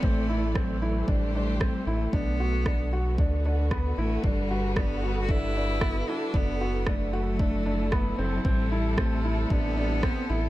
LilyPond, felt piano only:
\new Staff \with { instrumentName = "Felt piano" } { \time 4/4 \key a \dorian \tempo 4 = 114 c'8 e'8 c'8 e'8 d'8 d'8 c'8 e'8 | d'8 fis'8 d'8 fis'8 d'8 d'8 b8 e'8 | d'8 fis'8 d'8 fis'8 d'8 d'8 b8 e'8 | d'8 fis'8 d'8 fis'8 d'8 d'8 b8 c'8 |
c'8 e'8 c'8 e'8 d'8 d'8 c'8 e'8 | }